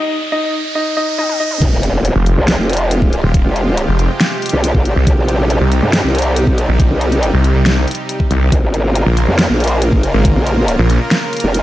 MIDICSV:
0, 0, Header, 1, 8, 480
1, 0, Start_track
1, 0, Key_signature, -4, "minor"
1, 0, Tempo, 431655
1, 1797, Time_signature, 4, 2, 24, 8
1, 12927, End_track
2, 0, Start_track
2, 0, Title_t, "Grand piano"
2, 0, Program_c, 0, 0
2, 0, Note_on_c, 0, 63, 75
2, 0, Note_on_c, 0, 75, 99
2, 152, Note_off_c, 0, 75, 0
2, 153, Note_off_c, 0, 63, 0
2, 357, Note_on_c, 0, 63, 77
2, 357, Note_on_c, 0, 75, 99
2, 633, Note_off_c, 0, 63, 0
2, 633, Note_off_c, 0, 75, 0
2, 836, Note_on_c, 0, 63, 76
2, 837, Note_on_c, 0, 75, 95
2, 1058, Note_off_c, 0, 63, 0
2, 1058, Note_off_c, 0, 75, 0
2, 1077, Note_on_c, 0, 63, 77
2, 1077, Note_on_c, 0, 75, 102
2, 1298, Note_off_c, 0, 63, 0
2, 1298, Note_off_c, 0, 75, 0
2, 1316, Note_on_c, 0, 75, 102
2, 1317, Note_on_c, 0, 63, 78
2, 1538, Note_off_c, 0, 63, 0
2, 1538, Note_off_c, 0, 75, 0
2, 1556, Note_on_c, 0, 63, 80
2, 1556, Note_on_c, 0, 75, 100
2, 1778, Note_off_c, 0, 63, 0
2, 1778, Note_off_c, 0, 75, 0
2, 12927, End_track
3, 0, Start_track
3, 0, Title_t, "Supersaw synth"
3, 0, Program_c, 1, 81
3, 1797, Note_on_c, 1, 48, 86
3, 1797, Note_on_c, 1, 65, 80
3, 1798, Note_on_c, 1, 56, 80
3, 1798, Note_on_c, 1, 67, 96
3, 5599, Note_off_c, 1, 56, 0
3, 5599, Note_off_c, 1, 65, 0
3, 5637, Note_on_c, 1, 55, 79
3, 5637, Note_on_c, 1, 63, 78
3, 9433, Note_off_c, 1, 48, 0
3, 9433, Note_off_c, 1, 67, 0
3, 9439, Note_off_c, 1, 55, 0
3, 9439, Note_off_c, 1, 63, 0
3, 9477, Note_on_c, 1, 49, 84
3, 9477, Note_on_c, 1, 58, 81
3, 9477, Note_on_c, 1, 65, 77
3, 9477, Note_on_c, 1, 70, 94
3, 12927, Note_off_c, 1, 49, 0
3, 12927, Note_off_c, 1, 58, 0
3, 12927, Note_off_c, 1, 65, 0
3, 12927, Note_off_c, 1, 70, 0
3, 12927, End_track
4, 0, Start_track
4, 0, Title_t, "Detuned saw bass"
4, 0, Program_c, 2, 39
4, 2398, Note_on_c, 2, 29, 96
4, 2619, Note_off_c, 2, 29, 0
4, 3598, Note_on_c, 2, 27, 95
4, 3819, Note_off_c, 2, 27, 0
4, 4318, Note_on_c, 2, 29, 93
4, 4539, Note_off_c, 2, 29, 0
4, 5519, Note_on_c, 2, 36, 95
4, 5618, Note_off_c, 2, 36, 0
4, 6238, Note_on_c, 2, 36, 95
4, 6459, Note_off_c, 2, 36, 0
4, 7439, Note_on_c, 2, 34, 100
4, 7659, Note_off_c, 2, 34, 0
4, 8159, Note_on_c, 2, 36, 96
4, 8379, Note_off_c, 2, 36, 0
4, 8399, Note_on_c, 2, 36, 97
4, 8738, Note_off_c, 2, 36, 0
4, 9237, Note_on_c, 2, 36, 95
4, 9458, Note_off_c, 2, 36, 0
4, 10079, Note_on_c, 2, 34, 96
4, 10299, Note_off_c, 2, 34, 0
4, 11279, Note_on_c, 2, 32, 95
4, 11499, Note_off_c, 2, 32, 0
4, 11999, Note_on_c, 2, 34, 95
4, 12219, Note_off_c, 2, 34, 0
4, 12927, End_track
5, 0, Start_track
5, 0, Title_t, "Wobble bass"
5, 0, Program_c, 3, 39
5, 1797, Note_on_c, 3, 29, 97
5, 1899, Note_off_c, 3, 29, 0
5, 1918, Note_on_c, 3, 27, 94
5, 2379, Note_off_c, 3, 27, 0
5, 2638, Note_on_c, 3, 36, 98
5, 2859, Note_off_c, 3, 36, 0
5, 2878, Note_on_c, 3, 29, 98
5, 3579, Note_off_c, 3, 29, 0
5, 3839, Note_on_c, 3, 29, 95
5, 4299, Note_off_c, 3, 29, 0
5, 5038, Note_on_c, 3, 36, 98
5, 5259, Note_off_c, 3, 36, 0
5, 5278, Note_on_c, 3, 32, 94
5, 5499, Note_off_c, 3, 32, 0
5, 5636, Note_on_c, 3, 36, 95
5, 5739, Note_off_c, 3, 36, 0
5, 5758, Note_on_c, 3, 34, 99
5, 6219, Note_off_c, 3, 34, 0
5, 6478, Note_on_c, 3, 43, 94
5, 6699, Note_off_c, 3, 43, 0
5, 6718, Note_on_c, 3, 36, 96
5, 7219, Note_off_c, 3, 36, 0
5, 7219, Note_on_c, 3, 35, 96
5, 7419, Note_off_c, 3, 35, 0
5, 7678, Note_on_c, 3, 36, 96
5, 8139, Note_off_c, 3, 36, 0
5, 9477, Note_on_c, 3, 34, 98
5, 9579, Note_off_c, 3, 34, 0
5, 9597, Note_on_c, 3, 32, 98
5, 10058, Note_off_c, 3, 32, 0
5, 10317, Note_on_c, 3, 41, 99
5, 10539, Note_off_c, 3, 41, 0
5, 10558, Note_on_c, 3, 34, 99
5, 11259, Note_off_c, 3, 34, 0
5, 11518, Note_on_c, 3, 34, 96
5, 11979, Note_off_c, 3, 34, 0
5, 12718, Note_on_c, 3, 29, 100
5, 12927, Note_off_c, 3, 29, 0
5, 12927, End_track
6, 0, Start_track
6, 0, Title_t, "Impact"
6, 0, Program_c, 4, 103
6, 1797, Note_on_c, 4, 60, 76
6, 3717, Note_off_c, 4, 60, 0
6, 12927, End_track
7, 0, Start_track
7, 0, Title_t, "Riser"
7, 0, Program_c, 5, 103
7, 0, Note_on_c, 5, 60, 75
7, 1797, Note_off_c, 5, 60, 0
7, 12927, End_track
8, 0, Start_track
8, 0, Title_t, "Drums"
8, 1317, Note_on_c, 9, 48, 62
8, 1428, Note_off_c, 9, 48, 0
8, 1438, Note_on_c, 9, 48, 62
8, 1549, Note_off_c, 9, 48, 0
8, 1678, Note_on_c, 9, 45, 88
8, 1790, Note_off_c, 9, 45, 0
8, 1797, Note_on_c, 9, 36, 116
8, 1797, Note_on_c, 9, 42, 82
8, 1797, Note_on_c, 9, 49, 101
8, 1908, Note_off_c, 9, 36, 0
8, 1909, Note_off_c, 9, 42, 0
8, 1909, Note_off_c, 9, 49, 0
8, 2037, Note_on_c, 9, 42, 56
8, 2148, Note_off_c, 9, 42, 0
8, 2277, Note_on_c, 9, 42, 82
8, 2388, Note_off_c, 9, 42, 0
8, 2517, Note_on_c, 9, 42, 56
8, 2628, Note_off_c, 9, 42, 0
8, 2757, Note_on_c, 9, 38, 117
8, 2757, Note_on_c, 9, 42, 82
8, 2868, Note_off_c, 9, 38, 0
8, 2868, Note_off_c, 9, 42, 0
8, 2997, Note_on_c, 9, 42, 49
8, 3038, Note_off_c, 9, 42, 0
8, 3038, Note_on_c, 9, 42, 67
8, 3077, Note_off_c, 9, 42, 0
8, 3077, Note_on_c, 9, 42, 81
8, 3188, Note_off_c, 9, 42, 0
8, 3237, Note_on_c, 9, 42, 81
8, 3348, Note_off_c, 9, 42, 0
8, 3358, Note_on_c, 9, 36, 61
8, 3469, Note_off_c, 9, 36, 0
8, 3477, Note_on_c, 9, 42, 54
8, 3588, Note_off_c, 9, 42, 0
8, 3717, Note_on_c, 9, 36, 125
8, 3717, Note_on_c, 9, 42, 82
8, 3828, Note_off_c, 9, 36, 0
8, 3828, Note_off_c, 9, 42, 0
8, 3957, Note_on_c, 9, 42, 56
8, 4068, Note_off_c, 9, 42, 0
8, 4197, Note_on_c, 9, 42, 83
8, 4308, Note_off_c, 9, 42, 0
8, 4437, Note_on_c, 9, 42, 55
8, 4548, Note_off_c, 9, 42, 0
8, 4677, Note_on_c, 9, 38, 121
8, 4677, Note_on_c, 9, 42, 81
8, 4788, Note_off_c, 9, 38, 0
8, 4788, Note_off_c, 9, 42, 0
8, 4917, Note_on_c, 9, 42, 51
8, 4957, Note_off_c, 9, 42, 0
8, 4957, Note_on_c, 9, 42, 69
8, 4997, Note_off_c, 9, 42, 0
8, 4997, Note_on_c, 9, 42, 82
8, 5108, Note_off_c, 9, 42, 0
8, 5157, Note_on_c, 9, 42, 85
8, 5268, Note_off_c, 9, 42, 0
8, 5278, Note_on_c, 9, 36, 63
8, 5389, Note_off_c, 9, 36, 0
8, 5397, Note_on_c, 9, 42, 55
8, 5508, Note_off_c, 9, 42, 0
8, 5637, Note_on_c, 9, 36, 120
8, 5637, Note_on_c, 9, 42, 82
8, 5748, Note_off_c, 9, 36, 0
8, 5748, Note_off_c, 9, 42, 0
8, 5877, Note_on_c, 9, 42, 56
8, 5988, Note_off_c, 9, 42, 0
8, 6117, Note_on_c, 9, 42, 80
8, 6228, Note_off_c, 9, 42, 0
8, 6357, Note_on_c, 9, 42, 54
8, 6468, Note_off_c, 9, 42, 0
8, 6597, Note_on_c, 9, 38, 125
8, 6597, Note_on_c, 9, 42, 84
8, 6708, Note_off_c, 9, 38, 0
8, 6708, Note_off_c, 9, 42, 0
8, 6837, Note_on_c, 9, 42, 51
8, 6877, Note_off_c, 9, 42, 0
8, 6877, Note_on_c, 9, 42, 65
8, 6917, Note_off_c, 9, 42, 0
8, 6917, Note_on_c, 9, 42, 82
8, 7028, Note_off_c, 9, 42, 0
8, 7077, Note_on_c, 9, 42, 81
8, 7188, Note_off_c, 9, 42, 0
8, 7198, Note_on_c, 9, 36, 62
8, 7309, Note_off_c, 9, 36, 0
8, 7317, Note_on_c, 9, 42, 54
8, 7428, Note_off_c, 9, 42, 0
8, 7557, Note_on_c, 9, 36, 121
8, 7557, Note_on_c, 9, 42, 78
8, 7668, Note_off_c, 9, 36, 0
8, 7668, Note_off_c, 9, 42, 0
8, 7797, Note_on_c, 9, 42, 53
8, 7908, Note_off_c, 9, 42, 0
8, 7919, Note_on_c, 9, 42, 37
8, 8030, Note_off_c, 9, 42, 0
8, 8037, Note_on_c, 9, 42, 78
8, 8148, Note_off_c, 9, 42, 0
8, 8277, Note_on_c, 9, 42, 51
8, 8388, Note_off_c, 9, 42, 0
8, 8517, Note_on_c, 9, 38, 122
8, 8517, Note_on_c, 9, 42, 78
8, 8628, Note_off_c, 9, 38, 0
8, 8628, Note_off_c, 9, 42, 0
8, 8758, Note_on_c, 9, 42, 49
8, 8798, Note_off_c, 9, 42, 0
8, 8798, Note_on_c, 9, 42, 63
8, 8838, Note_off_c, 9, 42, 0
8, 8838, Note_on_c, 9, 42, 80
8, 8949, Note_off_c, 9, 42, 0
8, 8998, Note_on_c, 9, 42, 78
8, 9109, Note_off_c, 9, 42, 0
8, 9118, Note_on_c, 9, 36, 64
8, 9229, Note_off_c, 9, 36, 0
8, 9238, Note_on_c, 9, 42, 51
8, 9349, Note_off_c, 9, 42, 0
8, 9477, Note_on_c, 9, 36, 118
8, 9477, Note_on_c, 9, 42, 76
8, 9588, Note_off_c, 9, 36, 0
8, 9588, Note_off_c, 9, 42, 0
8, 9717, Note_on_c, 9, 42, 50
8, 9829, Note_off_c, 9, 42, 0
8, 9958, Note_on_c, 9, 42, 75
8, 10069, Note_off_c, 9, 42, 0
8, 10197, Note_on_c, 9, 42, 52
8, 10308, Note_off_c, 9, 42, 0
8, 10437, Note_on_c, 9, 38, 122
8, 10437, Note_on_c, 9, 42, 73
8, 10549, Note_off_c, 9, 38, 0
8, 10549, Note_off_c, 9, 42, 0
8, 10677, Note_on_c, 9, 42, 47
8, 10718, Note_off_c, 9, 42, 0
8, 10718, Note_on_c, 9, 42, 62
8, 10758, Note_off_c, 9, 42, 0
8, 10758, Note_on_c, 9, 42, 76
8, 10869, Note_off_c, 9, 42, 0
8, 10918, Note_on_c, 9, 42, 77
8, 11029, Note_off_c, 9, 42, 0
8, 11038, Note_on_c, 9, 36, 60
8, 11149, Note_off_c, 9, 36, 0
8, 11158, Note_on_c, 9, 42, 50
8, 11269, Note_off_c, 9, 42, 0
8, 11397, Note_on_c, 9, 36, 114
8, 11398, Note_on_c, 9, 42, 77
8, 11508, Note_off_c, 9, 36, 0
8, 11509, Note_off_c, 9, 42, 0
8, 11638, Note_on_c, 9, 42, 51
8, 11749, Note_off_c, 9, 42, 0
8, 11877, Note_on_c, 9, 42, 75
8, 11988, Note_off_c, 9, 42, 0
8, 12117, Note_on_c, 9, 42, 52
8, 12228, Note_off_c, 9, 42, 0
8, 12358, Note_on_c, 9, 38, 116
8, 12358, Note_on_c, 9, 42, 77
8, 12469, Note_off_c, 9, 38, 0
8, 12469, Note_off_c, 9, 42, 0
8, 12598, Note_on_c, 9, 42, 47
8, 12638, Note_off_c, 9, 42, 0
8, 12638, Note_on_c, 9, 42, 61
8, 12677, Note_off_c, 9, 42, 0
8, 12677, Note_on_c, 9, 42, 77
8, 12788, Note_off_c, 9, 42, 0
8, 12837, Note_on_c, 9, 42, 74
8, 12927, Note_off_c, 9, 42, 0
8, 12927, End_track
0, 0, End_of_file